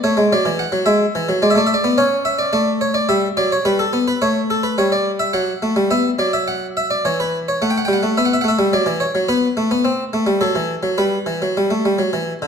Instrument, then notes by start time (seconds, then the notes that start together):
harpsichord
0.04 A3 C#5
0.17 G#3
0.33 F#3 D5
0.45 E3
0.59 F#5
0.72 F#3
0.86 G#3 E5
1.15 E3
1.29 F#3
1.42 G#3 D5
1.50 E5
1.55 A3 D5
1.67 E5
1.74 D5
1.84 B3
1.98 C#4 C#5
2.25 E5
2.39 D5
2.53 A3 D5
2.81 C#5
2.94 D5
3.09 G3 E5
3.37 F#3 D5
3.52 C#5
3.65 G3 B4
3.79 A4
3.93 B3
4.08 B4
4.22 A3 C#5
4.50 A4
4.63 B4
4.78 G3 C#5
4.92 D5
5.19 E5
5.33 F#3 F#5
5.62 A3
5.76 G3
5.91 B3 E5
6.19 F#3 D5
6.33 E5
6.48 F#5
6.77 E5
6.91 D5
7.05 E3 C#5
7.20 B4
7.48 C#5
7.62 A3 F#5
7.70 G5
7.78 F#5
7.85 G3 G5
7.93 F#5
8.03 A3
8.17 B3 E5
8.25 F#5
8.33 E5
8.41 A3 F#5
8.48 E5
8.59 G3
8.73 F#3 D5
8.86 E3
9.00 C#5
9.15 F#3
9.29 B3 B4
9.57 A3
9.71 B3
9.85 C4
10.13 A3
10.27 G3
10.41 F#3 A4
10.55 E3
10.83 F#3
10.98 G3 B4
11.26 E3
11.42 F#3
11.57 G3
11.71 A3
11.85 G3
11.99 F#3
12.13 E3
12.42 D3